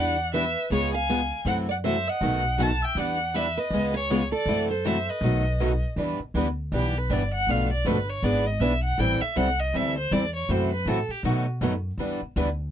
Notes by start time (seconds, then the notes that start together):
Already playing: E2 E3 G3 B3 D4 E4 G4 B4 D5 F#5
0.34 E3 G3 B3 D4 E4 G4 B4 E5
0.70 C#2 C#3 G#3 B3 F4 G#4 C#5
0.94 F5 G#5
1.09 C#3 G#3 B3 F4 G#4
1.45 F#2 C3 E3 F#3 A3 C4 E4 F#4 A4 C5 F#5
1.69 D5 F#5
1.84 C3 E3 F#3 A3 C4 E4 F#4 A4 C5 E5
2.08 D#5 F#5
2.21 B1 B2 D#3 F#3 A3 B3 D#4 F#4 A4
2.59 B2 D#3 F#3 A3 B3 D#4 F#4 A4 F#5 A5
2.82 E5 G5
2.95 E2 E3 G3 B3 D4 E4 G4 B4 D5 F#5
3.34 E3 G3 B3 D4 E4 G4 B4 E5
3.57 B4 D#5
3.71 C#2 C#3 G#3 B3 F4 G#4
3.94 G#4 C#5
4.10 C#3 G#3 B3 F4 G#4
4.32 A4 D5
4.46 F#2 C3 E3 F#3 A3 C4 E4 F#4 A4
4.70 A4 C5
4.85 C3 E3 F#3 A3 C4 E4 F#4 A4 C5 E5
5.09 B4 D#5
5.21 B1 B2 D#3 F#3 A3 B3 D#4 F#4 A4
5.60 B2 D#3 F#3 A3 B3 D#4 F#4 A4
5.96 E2 E3 G3 B3 D4 E4 B4
6.00 G4
6.19 muted upright bass stroke
6.34 D2 E3 G3 B3 D4 E4 G4 B4
6.72 B1 E3 G3 B3 D4 E4 G4 B4
6.98 B4
7.10 G1 E3 G3 B3 D4 E4 G4 B4 D5
7.34 F#5
7.47 B1 B2 F3 A3 D4 A4 B4 F5
7.73 D5
7.85 G1 B2 F3 A3 D4 A4 B4
8.09 C#5
8.22 G#1 E3 B3 D4 G#4 B4 D5
8.46 D#5
8.60 B1 E3 B3 D4 G#4 B4 E5
8.84 F#5
8.98 A1 E3 G3 C4 E4 A4 G5
9.21 E5, muted upright bass stroke
9.36 C2 E3 G3 C4 E4 A4 F#5
9.60 D#5
9.74 D2 E3 G3 C4 E4 A4 E5
9.98 C5
10.11 E2 E3 G3 C4 E4 A4 D5
10.36 C#5
10.49 F#2 C3 E3 F#3 A3 C4 E4 F#4 A4 C5
10.73 B4
10.86 A2 C3 E3 F#3 A3 C4 E4 F#4 A4
11.09 G4, muted upright bass stroke
11.23 B2 D#3 F#3 A3 B3 D#4 F#4 A4
11.61 F#2 B2 D#3 F#3 A3 B3 D#4 F#4 A4
11.97 E2 E3 G3 B3 D4 E4 G4 B4
12.22 muted upright bass stroke
12.36 D2 E3 G3 B3 D4 E4 G4 B4